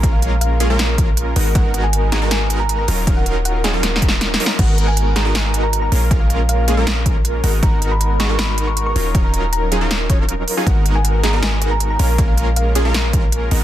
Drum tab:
CC |------------------------|------------------------|------------------------|x-----------------------|
HH |x--x--x--x--x--x--x--o--|x--x--x--x--x--x--x--o--|x--x--x--x--x--x--x--o--|x--x--x--x--x--x--x--o--|
SD |------------o-----------|---------o--o-----------|---------o--o-o-o-o-o-o-|---------o--o-----------|
BD |o--------------o--------|o-----------------------|o--------------o--------|o-----------------------|

CC |------------------------|------------------------|------------------------|------------------------|
HH |x--x--x--x--x--x--x--o--|x--x--x--x--x--x--x--o--|x--x--x--x--x--x--x--o--|x--x--x--x--x--x--x--o--|
SD |------------o-----------|---------o--o-----------|------------o-----------|---------o--o-----------|
BD |o--------------o--------|o-----------------------|o--------------o--------|o-----------------------|

CC |------------------------|
HH |x--x--x--x--x--x--x--o--|
SD |------------o-----------|
BD |o--------------o--------|